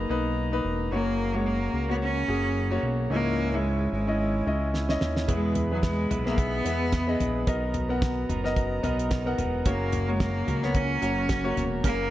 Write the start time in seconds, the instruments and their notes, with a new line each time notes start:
Already playing: grand piano A#3 D#4 G#4 B4, brass ensemble F#4 A#4 D#5 A#5
0.09 analog synth bass B1, grand piano A#3 D#4 B4
0.52 grand piano A#3 D#4 B4
0.65 analog synth bass E1
0.91 analog synth bass F#1, grand piano C#3 A#3 F#4 C#5, cello A#3, brass ensemble A#4 C#5 A#5
1.34 cello G#3, grand piano A#3 F#4 C#5
1.47 cello A#3
1.74 analog synth bass C#2
1.88 grand piano A#3 F#4 C#5, cello B3
2.02 cello C#4
2.28 analog synth bass F#1, grand piano A#3 F#4 G#4
2.71 grand piano A#3 F#4 C#5
2.83 analog synth bass B1
3.10 analog synth bass C#2, grand piano G#2 C#4 E4 D#5, cello A#3, brass ensemble E4 E5 G#5
3.52 cello G#3, grand piano C#4 E4 E5
3.92 analog synth bass G#1, cello G#3
4.07 grand piano C#4 E4 D#5
4.47 analog synth bass C#2, grand piano C#4 E4 D#5
4.74 snare
4.89 grand piano C#4 E4 D#5, snare
5.01 analog synth bass D#2, snare
5.17 snare
5.28 analog synth bass E2, grand piano B2 B3 G#4 E5, clean electric guitar E3 G#3 B3 E4 B4, cello G#3, brass ensemble B3 G#4 E5 B5, kick, closed hi-hat
5.55 closed hi-hat, floor tom
5.71 cello F#3, grand piano B3 G#4 B4
5.83 cello G#3, kick, snare, closed hi-hat
6.10 analog synth bass B1, clean electric guitar G#3 B3 E4 B4, closed hi-hat, floor tom
6.26 cello A#3, grand piano B3 G#4 E5, snare
6.38 cello B3, kick, closed hi-hat
6.65 analog synth bass E2, clean electric guitar G#3 B3 E4 B4, grand piano B3 G#4 E5, closed hi-hat
6.92 clean electric guitar G#3 B3 E4 B4, kick, snare, closed hi-hat
7.08 grand piano B3 G#4 D#5
7.20 analog synth bass A#1, clean electric guitar G#3 B3 E4 B4, closed hi-hat, floor tom
7.46 analog synth bass B1, clean electric guitar B2 D#3 F#3 B3 D#4 A#4, grand piano B3 A#4 D#5, brass ensemble F#4 D#5 A#5, kick, closed hi-hat
7.74 closed hi-hat, floor tom
7.89 grand piano B3 A#4 F#5
8.02 kick, snare, closed hi-hat
8.29 analog synth bass F#1, clean electric guitar F#3 B3 D#4 A#4, closed hi-hat, floor tom
8.44 grand piano B3 A#4 D#5, snare
8.56 kick, closed hi-hat
8.83 analog synth bass B1, clean electric guitar F#3 B3 D#4 A#4, grand piano B3 A#4 D#5, closed hi-hat, floor tom
8.99 closed hi-hat
9.11 clean electric guitar F#3 B3 D#4 A#4, kick, snare, closed hi-hat
9.26 grand piano B3 A#4 F#5
9.38 analog synth bass E1, clean electric guitar F#3 B3 D#4 A#4, closed hi-hat, floor tom
9.65 analog synth bass F#1, grand piano C#3 A#3 F#4 C#5, clean electric guitar F#3 C#4 F#4 A#4, cello A#3, brass ensemble F#4 A#4 C#5 A#5, kick, closed hi-hat
9.93 closed hi-hat, floor tom
10.08 cello G#3, grand piano A#3 F#4 C#5
10.20 cello A#3, kick, snare, closed hi-hat
10.47 analog synth bass C#2, clean electric guitar F#3 C#4 F#4 A#4, closed hi-hat, floor tom
10.62 grand piano A#3 F#4 C#5, cello B3, snare
10.75 cello C#4, kick, closed hi-hat
11.02 analog synth bass F#1, clean electric guitar F#3 C#4 F#4 A#4, grand piano A#3 F#4 C#5, closed hi-hat
11.29 clean electric guitar F#3 C#4 F#4 A#4, kick, snare, closed hi-hat
11.44 grand piano A#3 F#4 C#5
11.57 analog synth bass E1, clean electric guitar F#3 C#4 F#4 A#4, closed hi-hat, floor tom
11.83 analog synth bass F#1, grand piano C#3 A#3 F#4 A#4, clean electric guitar F#3 C#4 F#4 A#4, cello A#3, kick, closed hi-hat